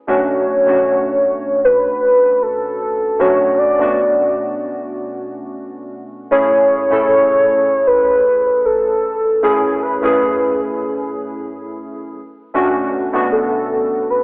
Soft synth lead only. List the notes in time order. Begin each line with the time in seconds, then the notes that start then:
0.09 C#5
1.65 B4
2.43 A4
3.20 C#5
3.58 D5
6.31 C#5
7.87 B4
8.65 A4
9.43 G#4
9.82 B4
13.32 A4
14.10 B4